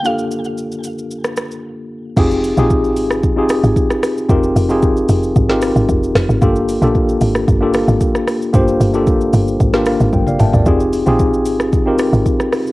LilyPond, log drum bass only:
\new Staff \with { instrumentName = "Log drum bass" } { \clef bass \time 4/4 \key f \dorian \tempo 4 = 113 r1 | f,,8. bes,,8. aes,,8 f,,8. aes,,16 r4 | f,,8 f,,4 f,,8 aes,,8. aes,,16 f,,8 f,,16 aes,,16 | g,,8. bes,,8. aes,,8 g,,8. aes,,16 r4 |
g,,8 g,,4 g,,8 aes,,8. aes,,16 g,,8 g,,16 aes,,16 | f,,8. bes,,8. aes,,8 f,,8. aes,,16 r4 | }